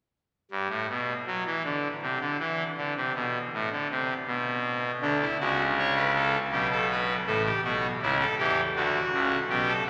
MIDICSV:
0, 0, Header, 1, 2, 480
1, 0, Start_track
1, 0, Tempo, 747198
1, 336, Time_signature, 3, 2, 24, 8
1, 6359, End_track
2, 0, Start_track
2, 0, Title_t, "Pipe organ"
2, 0, Program_c, 0, 19
2, 330, Note_on_c, 0, 43, 66
2, 437, Note_off_c, 0, 43, 0
2, 445, Note_on_c, 0, 45, 66
2, 555, Note_off_c, 0, 45, 0
2, 577, Note_on_c, 0, 47, 67
2, 727, Note_off_c, 0, 47, 0
2, 815, Note_on_c, 0, 54, 72
2, 921, Note_off_c, 0, 54, 0
2, 938, Note_on_c, 0, 52, 73
2, 1043, Note_off_c, 0, 52, 0
2, 1057, Note_on_c, 0, 50, 71
2, 1208, Note_off_c, 0, 50, 0
2, 1299, Note_on_c, 0, 48, 67
2, 1404, Note_off_c, 0, 48, 0
2, 1419, Note_on_c, 0, 50, 74
2, 1524, Note_off_c, 0, 50, 0
2, 1540, Note_on_c, 0, 52, 73
2, 1691, Note_off_c, 0, 52, 0
2, 1782, Note_on_c, 0, 50, 75
2, 1887, Note_off_c, 0, 50, 0
2, 1905, Note_on_c, 0, 48, 69
2, 2008, Note_off_c, 0, 48, 0
2, 2023, Note_on_c, 0, 47, 69
2, 2173, Note_off_c, 0, 47, 0
2, 2268, Note_on_c, 0, 45, 70
2, 2370, Note_off_c, 0, 45, 0
2, 2389, Note_on_c, 0, 50, 75
2, 2490, Note_off_c, 0, 50, 0
2, 2512, Note_on_c, 0, 48, 74
2, 2658, Note_off_c, 0, 48, 0
2, 2743, Note_on_c, 0, 47, 70
2, 3156, Note_off_c, 0, 47, 0
2, 3221, Note_on_c, 0, 38, 65
2, 3222, Note_on_c, 0, 50, 66
2, 3224, Note_on_c, 0, 62, 79
2, 3328, Note_off_c, 0, 62, 0
2, 3351, Note_on_c, 0, 64, 72
2, 3371, Note_off_c, 0, 38, 0
2, 3372, Note_off_c, 0, 50, 0
2, 3452, Note_off_c, 0, 64, 0
2, 3469, Note_on_c, 0, 49, 61
2, 3469, Note_on_c, 0, 66, 75
2, 3470, Note_on_c, 0, 37, 61
2, 3616, Note_off_c, 0, 66, 0
2, 3717, Note_on_c, 0, 73, 85
2, 3814, Note_off_c, 0, 73, 0
2, 3830, Note_on_c, 0, 71, 80
2, 3930, Note_off_c, 0, 71, 0
2, 3953, Note_on_c, 0, 69, 84
2, 4084, Note_off_c, 0, 49, 0
2, 4085, Note_off_c, 0, 37, 0
2, 4098, Note_off_c, 0, 69, 0
2, 4188, Note_on_c, 0, 67, 82
2, 4191, Note_on_c, 0, 35, 61
2, 4191, Note_on_c, 0, 47, 63
2, 4289, Note_off_c, 0, 67, 0
2, 4315, Note_on_c, 0, 69, 81
2, 4412, Note_off_c, 0, 69, 0
2, 4439, Note_on_c, 0, 71, 82
2, 4582, Note_off_c, 0, 71, 0
2, 4598, Note_off_c, 0, 35, 0
2, 4598, Note_off_c, 0, 47, 0
2, 4669, Note_on_c, 0, 45, 69
2, 4669, Note_on_c, 0, 69, 79
2, 4672, Note_on_c, 0, 33, 67
2, 4768, Note_off_c, 0, 69, 0
2, 4792, Note_on_c, 0, 67, 74
2, 4814, Note_off_c, 0, 45, 0
2, 4816, Note_off_c, 0, 33, 0
2, 4889, Note_off_c, 0, 67, 0
2, 4909, Note_on_c, 0, 66, 77
2, 4910, Note_on_c, 0, 35, 60
2, 4910, Note_on_c, 0, 47, 70
2, 5054, Note_off_c, 0, 35, 0
2, 5054, Note_off_c, 0, 47, 0
2, 5054, Note_off_c, 0, 66, 0
2, 5152, Note_on_c, 0, 37, 68
2, 5155, Note_on_c, 0, 49, 71
2, 5156, Note_on_c, 0, 64, 89
2, 5250, Note_off_c, 0, 64, 0
2, 5268, Note_on_c, 0, 69, 87
2, 5295, Note_off_c, 0, 37, 0
2, 5297, Note_off_c, 0, 49, 0
2, 5365, Note_off_c, 0, 69, 0
2, 5385, Note_on_c, 0, 67, 87
2, 5386, Note_on_c, 0, 40, 72
2, 5388, Note_on_c, 0, 52, 70
2, 5530, Note_off_c, 0, 67, 0
2, 5531, Note_off_c, 0, 40, 0
2, 5532, Note_off_c, 0, 52, 0
2, 5625, Note_on_c, 0, 50, 66
2, 5625, Note_on_c, 0, 66, 85
2, 5628, Note_on_c, 0, 38, 65
2, 5770, Note_off_c, 0, 50, 0
2, 5772, Note_off_c, 0, 38, 0
2, 5865, Note_on_c, 0, 37, 71
2, 5866, Note_on_c, 0, 49, 71
2, 6010, Note_off_c, 0, 37, 0
2, 6010, Note_off_c, 0, 49, 0
2, 6032, Note_off_c, 0, 66, 0
2, 6099, Note_on_c, 0, 35, 69
2, 6099, Note_on_c, 0, 67, 84
2, 6100, Note_on_c, 0, 47, 68
2, 6221, Note_on_c, 0, 69, 79
2, 6246, Note_off_c, 0, 35, 0
2, 6246, Note_off_c, 0, 67, 0
2, 6247, Note_off_c, 0, 47, 0
2, 6320, Note_off_c, 0, 69, 0
2, 6339, Note_on_c, 0, 66, 66
2, 6339, Note_on_c, 0, 71, 78
2, 6359, Note_off_c, 0, 66, 0
2, 6359, Note_off_c, 0, 71, 0
2, 6359, End_track
0, 0, End_of_file